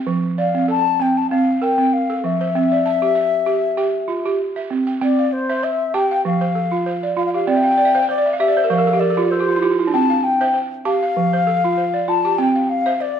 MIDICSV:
0, 0, Header, 1, 3, 480
1, 0, Start_track
1, 0, Key_signature, -1, "major"
1, 0, Tempo, 616650
1, 40, Time_signature, 4, 2, 24, 8
1, 10273, End_track
2, 0, Start_track
2, 0, Title_t, "Flute"
2, 0, Program_c, 0, 73
2, 298, Note_on_c, 0, 77, 71
2, 516, Note_off_c, 0, 77, 0
2, 545, Note_on_c, 0, 81, 100
2, 790, Note_on_c, 0, 79, 79
2, 802, Note_off_c, 0, 81, 0
2, 912, Note_on_c, 0, 81, 76
2, 924, Note_off_c, 0, 79, 0
2, 1006, Note_off_c, 0, 81, 0
2, 1011, Note_on_c, 0, 77, 84
2, 1264, Note_on_c, 0, 79, 75
2, 1276, Note_off_c, 0, 77, 0
2, 1503, Note_on_c, 0, 77, 76
2, 1515, Note_off_c, 0, 79, 0
2, 1750, Note_on_c, 0, 76, 83
2, 1762, Note_off_c, 0, 77, 0
2, 3427, Note_off_c, 0, 76, 0
2, 3913, Note_on_c, 0, 74, 66
2, 4145, Note_on_c, 0, 72, 70
2, 4157, Note_off_c, 0, 74, 0
2, 4386, Note_on_c, 0, 76, 80
2, 4398, Note_off_c, 0, 72, 0
2, 4624, Note_on_c, 0, 79, 82
2, 4635, Note_off_c, 0, 76, 0
2, 4860, Note_off_c, 0, 79, 0
2, 4869, Note_on_c, 0, 77, 84
2, 5550, Note_off_c, 0, 77, 0
2, 5575, Note_on_c, 0, 77, 85
2, 5637, Note_off_c, 0, 77, 0
2, 5644, Note_on_c, 0, 77, 72
2, 5702, Note_off_c, 0, 77, 0
2, 5706, Note_on_c, 0, 77, 85
2, 5807, Note_off_c, 0, 77, 0
2, 5828, Note_on_c, 0, 79, 91
2, 6269, Note_off_c, 0, 79, 0
2, 6296, Note_on_c, 0, 74, 86
2, 6518, Note_off_c, 0, 74, 0
2, 6524, Note_on_c, 0, 76, 82
2, 6761, Note_on_c, 0, 77, 81
2, 6773, Note_off_c, 0, 76, 0
2, 7001, Note_on_c, 0, 74, 81
2, 7013, Note_off_c, 0, 77, 0
2, 7243, Note_on_c, 0, 72, 90
2, 7255, Note_off_c, 0, 74, 0
2, 7617, Note_off_c, 0, 72, 0
2, 7730, Note_on_c, 0, 81, 94
2, 7967, Note_on_c, 0, 79, 89
2, 7979, Note_off_c, 0, 81, 0
2, 8238, Note_off_c, 0, 79, 0
2, 8445, Note_on_c, 0, 77, 99
2, 9405, Note_on_c, 0, 81, 97
2, 9417, Note_off_c, 0, 77, 0
2, 9637, Note_on_c, 0, 79, 85
2, 9649, Note_off_c, 0, 81, 0
2, 9877, Note_on_c, 0, 77, 81
2, 9889, Note_off_c, 0, 79, 0
2, 10125, Note_on_c, 0, 74, 91
2, 10137, Note_off_c, 0, 77, 0
2, 10273, Note_off_c, 0, 74, 0
2, 10273, End_track
3, 0, Start_track
3, 0, Title_t, "Balafon"
3, 0, Program_c, 1, 12
3, 0, Note_on_c, 1, 79, 57
3, 52, Note_on_c, 1, 53, 71
3, 179, Note_off_c, 1, 79, 0
3, 288, Note_off_c, 1, 53, 0
3, 297, Note_on_c, 1, 74, 61
3, 424, Note_on_c, 1, 60, 65
3, 531, Note_on_c, 1, 69, 59
3, 661, Note_off_c, 1, 60, 0
3, 664, Note_off_c, 1, 74, 0
3, 777, Note_on_c, 1, 60, 70
3, 901, Note_off_c, 1, 69, 0
3, 1013, Note_off_c, 1, 60, 0
3, 1022, Note_on_c, 1, 60, 78
3, 1256, Note_off_c, 1, 60, 0
3, 1258, Note_on_c, 1, 70, 57
3, 1387, Note_on_c, 1, 60, 69
3, 1625, Note_off_c, 1, 60, 0
3, 1627, Note_off_c, 1, 70, 0
3, 1632, Note_on_c, 1, 69, 55
3, 1743, Note_on_c, 1, 53, 61
3, 1875, Note_on_c, 1, 72, 56
3, 1978, Note_off_c, 1, 69, 0
3, 1979, Note_off_c, 1, 53, 0
3, 1987, Note_on_c, 1, 60, 72
3, 2110, Note_off_c, 1, 72, 0
3, 2115, Note_on_c, 1, 74, 50
3, 2221, Note_off_c, 1, 60, 0
3, 2223, Note_on_c, 1, 81, 55
3, 2351, Note_on_c, 1, 67, 62
3, 2455, Note_on_c, 1, 76, 54
3, 2460, Note_off_c, 1, 74, 0
3, 2589, Note_off_c, 1, 67, 0
3, 2592, Note_off_c, 1, 81, 0
3, 2696, Note_on_c, 1, 67, 70
3, 2828, Note_off_c, 1, 76, 0
3, 2927, Note_off_c, 1, 67, 0
3, 2937, Note_on_c, 1, 67, 72
3, 2938, Note_on_c, 1, 79, 59
3, 3175, Note_on_c, 1, 65, 53
3, 3177, Note_off_c, 1, 67, 0
3, 3310, Note_off_c, 1, 79, 0
3, 3312, Note_on_c, 1, 67, 67
3, 3548, Note_off_c, 1, 65, 0
3, 3550, Note_on_c, 1, 76, 54
3, 3551, Note_off_c, 1, 67, 0
3, 3662, Note_on_c, 1, 60, 68
3, 3790, Note_on_c, 1, 79, 54
3, 3893, Note_off_c, 1, 79, 0
3, 3895, Note_off_c, 1, 60, 0
3, 3898, Note_off_c, 1, 76, 0
3, 3902, Note_on_c, 1, 79, 65
3, 3904, Note_on_c, 1, 60, 77
3, 4039, Note_on_c, 1, 77, 50
3, 4141, Note_off_c, 1, 60, 0
3, 4272, Note_off_c, 1, 79, 0
3, 4276, Note_on_c, 1, 76, 59
3, 4278, Note_on_c, 1, 72, 69
3, 4373, Note_off_c, 1, 72, 0
3, 4382, Note_off_c, 1, 77, 0
3, 4382, Note_on_c, 1, 72, 62
3, 4621, Note_off_c, 1, 76, 0
3, 4624, Note_on_c, 1, 81, 67
3, 4625, Note_on_c, 1, 67, 74
3, 4751, Note_off_c, 1, 72, 0
3, 4757, Note_on_c, 1, 77, 57
3, 4861, Note_off_c, 1, 67, 0
3, 4866, Note_on_c, 1, 53, 74
3, 4990, Note_on_c, 1, 72, 62
3, 4992, Note_off_c, 1, 81, 0
3, 4993, Note_off_c, 1, 77, 0
3, 5100, Note_on_c, 1, 69, 52
3, 5101, Note_off_c, 1, 53, 0
3, 5227, Note_on_c, 1, 65, 64
3, 5332, Note_off_c, 1, 72, 0
3, 5341, Note_on_c, 1, 72, 60
3, 5467, Note_off_c, 1, 65, 0
3, 5469, Note_off_c, 1, 69, 0
3, 5473, Note_on_c, 1, 74, 54
3, 5578, Note_on_c, 1, 65, 73
3, 5710, Note_off_c, 1, 72, 0
3, 5716, Note_on_c, 1, 67, 57
3, 5809, Note_off_c, 1, 74, 0
3, 5816, Note_off_c, 1, 65, 0
3, 5817, Note_on_c, 1, 60, 72
3, 5818, Note_on_c, 1, 74, 67
3, 5884, Note_on_c, 1, 76, 60
3, 5939, Note_off_c, 1, 74, 0
3, 5942, Note_on_c, 1, 77, 61
3, 5951, Note_off_c, 1, 67, 0
3, 5994, Note_off_c, 1, 76, 0
3, 6001, Note_on_c, 1, 79, 61
3, 6045, Note_off_c, 1, 77, 0
3, 6053, Note_on_c, 1, 74, 73
3, 6055, Note_off_c, 1, 60, 0
3, 6111, Note_on_c, 1, 76, 71
3, 6112, Note_off_c, 1, 79, 0
3, 6176, Note_off_c, 1, 74, 0
3, 6186, Note_on_c, 1, 72, 72
3, 6186, Note_on_c, 1, 77, 69
3, 6227, Note_off_c, 1, 76, 0
3, 6246, Note_on_c, 1, 79, 62
3, 6287, Note_off_c, 1, 72, 0
3, 6287, Note_off_c, 1, 77, 0
3, 6297, Note_on_c, 1, 72, 65
3, 6354, Note_off_c, 1, 79, 0
3, 6367, Note_on_c, 1, 74, 72
3, 6417, Note_off_c, 1, 72, 0
3, 6428, Note_on_c, 1, 76, 65
3, 6475, Note_off_c, 1, 74, 0
3, 6485, Note_on_c, 1, 77, 66
3, 6527, Note_off_c, 1, 76, 0
3, 6537, Note_on_c, 1, 67, 69
3, 6541, Note_on_c, 1, 76, 71
3, 6594, Note_off_c, 1, 77, 0
3, 6602, Note_on_c, 1, 74, 67
3, 6659, Note_off_c, 1, 76, 0
3, 6670, Note_on_c, 1, 72, 74
3, 6712, Note_off_c, 1, 74, 0
3, 6725, Note_on_c, 1, 70, 66
3, 6764, Note_off_c, 1, 72, 0
3, 6773, Note_on_c, 1, 53, 77
3, 6773, Note_on_c, 1, 72, 69
3, 6774, Note_off_c, 1, 67, 0
3, 6827, Note_off_c, 1, 70, 0
3, 6837, Note_on_c, 1, 70, 73
3, 6895, Note_off_c, 1, 72, 0
3, 6905, Note_on_c, 1, 69, 70
3, 6948, Note_off_c, 1, 70, 0
3, 6954, Note_on_c, 1, 67, 66
3, 7005, Note_off_c, 1, 69, 0
3, 7010, Note_on_c, 1, 70, 64
3, 7012, Note_off_c, 1, 53, 0
3, 7067, Note_off_c, 1, 67, 0
3, 7082, Note_on_c, 1, 69, 64
3, 7133, Note_off_c, 1, 70, 0
3, 7139, Note_on_c, 1, 67, 67
3, 7140, Note_on_c, 1, 65, 76
3, 7189, Note_off_c, 1, 65, 0
3, 7191, Note_off_c, 1, 69, 0
3, 7198, Note_on_c, 1, 65, 69
3, 7241, Note_off_c, 1, 67, 0
3, 7254, Note_on_c, 1, 69, 62
3, 7308, Note_off_c, 1, 65, 0
3, 7320, Note_on_c, 1, 67, 58
3, 7374, Note_off_c, 1, 69, 0
3, 7385, Note_on_c, 1, 65, 68
3, 7429, Note_off_c, 1, 67, 0
3, 7443, Note_on_c, 1, 64, 62
3, 7484, Note_off_c, 1, 65, 0
3, 7491, Note_on_c, 1, 67, 67
3, 7493, Note_on_c, 1, 65, 76
3, 7551, Note_off_c, 1, 64, 0
3, 7552, Note_off_c, 1, 65, 0
3, 7561, Note_on_c, 1, 65, 65
3, 7613, Note_off_c, 1, 67, 0
3, 7623, Note_on_c, 1, 64, 65
3, 7670, Note_off_c, 1, 65, 0
3, 7686, Note_on_c, 1, 62, 66
3, 7722, Note_off_c, 1, 64, 0
3, 7735, Note_on_c, 1, 79, 63
3, 7737, Note_on_c, 1, 60, 82
3, 7792, Note_off_c, 1, 62, 0
3, 7861, Note_on_c, 1, 77, 59
3, 7972, Note_off_c, 1, 60, 0
3, 8102, Note_off_c, 1, 79, 0
3, 8102, Note_on_c, 1, 76, 59
3, 8103, Note_on_c, 1, 72, 75
3, 8195, Note_off_c, 1, 72, 0
3, 8204, Note_on_c, 1, 72, 63
3, 8208, Note_off_c, 1, 77, 0
3, 8447, Note_off_c, 1, 76, 0
3, 8448, Note_on_c, 1, 81, 68
3, 8449, Note_on_c, 1, 67, 76
3, 8576, Note_off_c, 1, 72, 0
3, 8584, Note_on_c, 1, 77, 58
3, 8687, Note_off_c, 1, 67, 0
3, 8692, Note_on_c, 1, 53, 74
3, 8817, Note_off_c, 1, 81, 0
3, 8820, Note_off_c, 1, 77, 0
3, 8822, Note_on_c, 1, 72, 62
3, 8928, Note_off_c, 1, 53, 0
3, 8928, Note_on_c, 1, 69, 60
3, 9064, Note_on_c, 1, 65, 70
3, 9156, Note_off_c, 1, 72, 0
3, 9165, Note_on_c, 1, 72, 54
3, 9291, Note_on_c, 1, 74, 53
3, 9296, Note_off_c, 1, 69, 0
3, 9299, Note_off_c, 1, 65, 0
3, 9403, Note_on_c, 1, 65, 67
3, 9534, Note_off_c, 1, 72, 0
3, 9535, Note_on_c, 1, 67, 58
3, 9639, Note_on_c, 1, 79, 59
3, 9640, Note_off_c, 1, 74, 0
3, 9640, Note_on_c, 1, 60, 81
3, 9642, Note_off_c, 1, 65, 0
3, 9773, Note_off_c, 1, 67, 0
3, 9773, Note_on_c, 1, 77, 57
3, 9880, Note_off_c, 1, 60, 0
3, 10009, Note_on_c, 1, 76, 61
3, 10011, Note_off_c, 1, 79, 0
3, 10012, Note_on_c, 1, 72, 69
3, 10112, Note_off_c, 1, 72, 0
3, 10119, Note_off_c, 1, 77, 0
3, 10121, Note_on_c, 1, 72, 56
3, 10273, Note_off_c, 1, 72, 0
3, 10273, Note_off_c, 1, 76, 0
3, 10273, End_track
0, 0, End_of_file